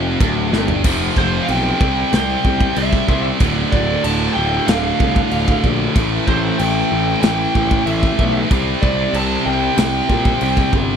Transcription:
Already playing: F1 F2
0.20 D1 D2, kick, china
0.52 G1 G2, snare
0.68 floor tom
0.84 F1 F2 C3 F3, kick, crash
1.16 F1 C5, kick
1.42 F5
1.48 B1 F2 C3 F3 G5, crash
1.80 C2 C3 G3 C4, kick
2.11 C2 C3 G3 C4, snare, crash
2.15 G5
2.45 C2, kick
2.60 kick
2.76 C2 C3 G3 C4 E5, crash
2.93 kick
3.08 C2 C3 G3 C4, kick
3.40 D1 D2 A2 D3, kick, crash
3.72 D1 D5, kick
4.04 D1 D2 A2 D3 A5, crash
4.33 D1 D2 A2 D3 G5
4.66 D1 D2 A2 D3 F5, snare, crash
5.00 C2, kick
5.16 kick
5.31 D1 D2 A2 D3, crash
5.48 kick
5.64 A#1 D2 A2 D3, kick
5.95 A1 A2 E3 A3, kick, crash
6.27 A1 C5, kick
6.58 A1 A2 E3 A3 G5, crash
6.91 A1 A2 E3 A3
7.21 A1 A2 E3 A3 G5, snare, crash
7.55 A1, kick
7.71 kick
7.86 A1 A2 E3 A3 E5, crash
8.03 kick
8.18 B1 A2 E3 A3, kick
8.50 C2 C3 G3 C4, kick, crash
8.82 C2 D5, kick
9.13 C2 C3 G3 C4 A5, crash
9.45 C2 C3 G3 C4 G5
9.76 C2 C3 G3 C4 G5, snare, crash
10.09 A#2, kick
10.25 kick
10.41 C2 C3 G3 C4, crash
10.57 kick
10.73 G1 C3 G3 C4, kick

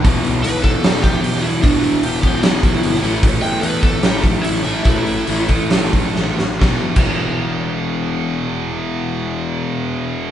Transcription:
0.02 E1 E2 B2 E3, kick, open hi-hat
0.24 B1, open hi-hat
0.43 B1 B4, open hi-hat
0.61 B2 E3 A4, kick, open hi-hat
0.65 E2
0.82 E1 E2 B2 E3, snare, open hi-hat
1.02 E1 G4, kick, open hi-hat
1.23 E1, open hi-hat
1.34 snare
1.42 E4, open hi-hat
1.62 E1 E2 B2 E3 D4, kick, open hi-hat
1.84 open hi-hat
2.03 E1 G4, open hi-hat
2.22 E1 E2 B2 E3, kick, open hi-hat
2.41 E1 E2 B2 E3 E4, snare, open hi-hat
2.63 E1, kick, open hi-hat
2.82 G1, open hi-hat
2.94 snare
3.02 A1 A2 E3 A3, open hi-hat
3.23 A1, kick, open hi-hat
3.42 E2 G5, open hi-hat
3.61 E2 A2 E3 B4, open hi-hat
3.65 A3
3.81 A2 E3 A3 A4, kick, open hi-hat
4.02 A1 G4, snare, open hi-hat
4.24 A1, kick, open hi-hat
4.43 A1 E4, open hi-hat
4.55 snare
4.64 A2 E3 A3, open hi-hat
4.84 A1 E4, kick, open hi-hat
5.07 open hi-hat
5.27 A1 A2 E3 A3, open hi-hat
5.48 A1 A2 E3 A3, kick, open hi-hat
5.71 A1, snare, open hi-hat
5.93 A1, kick, open hi-hat
6.15 A1, snare
6.38 A1, snare
6.60 E1 E2 B2, kick, snare
6.64 E3
6.95 E1 E2 B2 E3, kick, crash

